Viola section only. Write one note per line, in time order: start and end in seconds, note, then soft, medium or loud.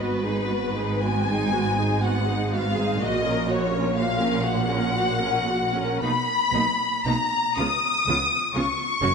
0.00 0.21 B3 medium
0.00 0.21 F#4 medium
0.23 0.50 D#4 medium
0.23 0.49 G#4 medium
0.48 0.75 B3 medium
0.48 0.75 F#4 medium
0.76 1.02 D#4 medium
0.76 1.02 G#4 medium
1.02 1.26 B3 medium
1.02 1.26 F#4 medium
1.27 1.52 D#4 medium
1.27 1.52 G#4 medium
1.52 1.77 B3 medium
1.52 1.77 F#4 medium
1.76 2.02 D#4 medium
1.76 2.02 G#4 medium
2.01 2.25 B3 medium
2.01 2.25 F#4 medium
2.27 2.52 D#4 medium
2.27 2.52 G#4 medium
2.52 2.76 B3 medium
2.52 2.76 F#4 medium
2.77 3.01 D#4 medium
2.77 3.01 G#4 medium
2.99 3.22 A#3 medium
2.99 3.22 F#4 medium
3.24 3.48 C#4 medium
3.24 3.49 A#4 medium
3.47 3.72 A#3 medium
3.47 3.72 F#4 medium
3.72 3.97 C#4 medium
3.72 3.96 A#4 medium
3.95 4.18 A#3 medium
3.95 4.18 F#4 medium
4.20 4.45 C#4 medium
4.20 4.45 A#4 medium
4.44 4.69 A#3 medium
4.44 4.69 F#4 medium
4.68 4.95 C#4 medium
4.68 4.95 A#4 medium
4.94 5.19 A#3 medium
4.94 5.19 F#4 medium
5.20 5.48 C#4 medium
5.20 5.47 A#4 medium
5.47 5.74 A#3 medium
5.47 5.74 F#4 medium
5.74 6.01 C#4 medium
5.74 6.01 A#4 medium
6.02 6.10 A#3 medium
6.02 6.10 D#4 medium
6.53 6.61 A#3 medium
6.53 6.62 D#4 medium
7.07 7.15 A#3 medium
7.07 7.15 D#4 medium
7.58 7.66 B3 medium
7.58 7.66 F4 medium
8.08 8.16 B3 medium
8.08 8.16 F4 medium
8.55 8.63 B3 medium
8.55 8.63 F4 medium
9.01 9.09 C#4 medium
9.01 9.09 F#4 medium